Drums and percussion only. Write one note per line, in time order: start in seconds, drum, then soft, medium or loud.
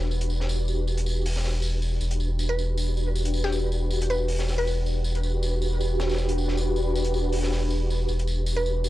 0.11 tambourine medium
0.21 closed hi-hat soft
0.30 tambourine medium
0.40 snare soft
0.49 tambourine medium
0.68 tambourine medium
0.88 tambourine medium
0.97 closed hi-hat soft
1.06 tambourine medium
1.26 open hi-hat medium
1.36 snare medium
1.44 snare medium
1.44 tambourine medium
1.62 tambourine medium
1.82 tambourine medium
2.01 tambourine medium
2.11 closed hi-hat soft
2.20 tambourine medium
2.39 tambourine medium
2.59 tambourine medium
2.77 tambourine medium
2.97 tambourine medium
3.15 tambourine medium
3.25 closed hi-hat soft
3.34 tambourine medium
3.45 snare soft
3.52 tambourine medium
3.72 tambourine medium
3.91 tambourine medium
4.01 closed hi-hat soft
4.11 tambourine medium
4.28 open hi-hat medium
4.39 snare medium
4.48 snare soft
4.48 tambourine medium
4.67 tambourine medium
4.86 tambourine medium
5.04 tambourine medium
5.15 closed hi-hat soft
5.23 tambourine medium
5.43 tambourine medium
5.62 tambourine medium
5.81 tambourine medium
6.00 snare loud
6.00 tambourine medium
6.09 snare medium
6.09 tambourine medium
6.14 snare medium
6.14 tambourine medium
6.18 tambourine medium
6.29 closed hi-hat soft
6.38 tambourine medium
6.48 snare soft
6.57 tambourine medium
6.76 tambourine medium
6.95 tambourine medium
7.04 closed hi-hat soft
7.14 tambourine medium
7.32 open hi-hat medium
7.43 snare medium
7.51 snare medium
7.51 tambourine medium
7.70 tambourine medium
7.90 tambourine medium
8.09 tambourine medium
8.19 closed hi-hat soft
8.27 tambourine medium
8.46 tambourine medium
8.66 tambourine medium
8.84 tambourine medium